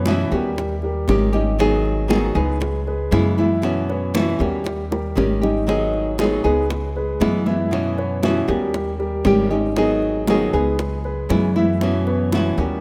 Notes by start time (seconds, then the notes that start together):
Already playing: F#2
0.06 B2 E3 B3 C#4 E4 F#4 E5, high bongo, high conga
0.31 D#2 G3 B3 C#4 F#4 G4 A#4, high bongo, high conga
0.56 muted nylon-string guitar stroke, high bongo, high conga
0.82 G3 G4 A#4, high conga
1.08 G#1 D#3 G3 C#4 G4, high bongo, low bongo, high conga
1.33 D#3 G3 C#4 D#4 G4 D#5, high bongo, high conga
1.59 D#3 F#3 B3 D#4 G#4 D#5, high bongo, high conga
1.85 high conga
2.08 D#3 F#3 B3 D#4 F#4 G#4, high bongo, high conga
2.35 C#2 G#3 B3 D#4 G#4 B4
2.60 muted nylon-string guitar stroke, high bongo, high conga
2.87 G#3 G#4 B4, high conga
3.11 F#2 C#3 E3 G#3 B3 E4, high bongo, low bongo, high conga
3.38 E3 G#3 B3 E4 E5, high conga
3.62 B2 E3 B3 C#4 F#4, high bongo
3.89 B3 B4 C#5, high bongo, high conga
4.14 B2 E3 B3 C#4 E4 F#4 E5, high bongo, high conga
4.39 D#2 G3 B3 C#4 F#4 G4 A#4, high bongo, high conga
4.64 muted nylon-string guitar stroke, high bongo, high conga
4.91 G3 G4 A#4, high bongo, high conga
5.15 G#1 D#3 G3 C#4 G4, low bongo, high conga
5.41 D#3 G3 C#4 D#4 G4 D#5, low bongo
5.67 D#3 F#3 B3 D#4 G#4 D#5, high bongo, high conga
5.94 high conga
6.18 D#3 F#3 B3 D#4 F#4 G#4, high bongo, high conga
6.44 C#2 G#3 B3 D#4 G#4 B4
6.70 muted nylon-string guitar stroke, high bongo, high conga
6.96 G#3 G#4 B4, high conga
7.20 F#2 C#3 E3 G#3 B3 E4, high bongo, low bongo, high conga
7.46 E3 G#3 B3 E4 E5, high conga
7.71 B2 E3 B3 C#4 F#4, high bongo, high conga
7.98 B3 B4 C#5, high bongo, high conga
8.23 B2 E3 B3 C#4 E4 F#4 E5, high bongo, high conga
8.48 D#2 G3 B3 C#4 F#4 G4 A#4, high bongo, high conga
8.74 muted nylon-string guitar stroke, high bongo, high conga
8.99 G3 G4 A#4, high conga
9.24 G#1 D#3 G3 C#4 G4, high bongo, low bongo, high conga
9.50 D#3 G3 C#4 D#4 G4 D#5, high bongo
9.76 D#3 F#3 B3 D#4 G#4 D#5, high bongo, high conga
10.02 high conga
10.27 D#3 F#3 B3 D#4 F#4 G#4, high bongo, high conga
10.53 C#2 G#3 B3 D#4 G#4 B4
10.79 muted nylon-string guitar stroke, high bongo, high conga
11.04 G#3 G#4 B4, high conga
11.29 F#2 C#3 E3 G#3 B3 E4, high bongo, low bongo, high conga
11.56 E3 G#3 B3 E4 E5, high conga
11.81 B2 E3 B3 C#4 F#4, high bongo, high conga
12.07 B3 B4 C#5, high bongo, high conga
12.32 B2 E3 B3 C#4 E4 F#4 E5, high bongo, high conga
12.57 D#2 G3 B3 C#4 F#4 G4 A#4, high bongo, high conga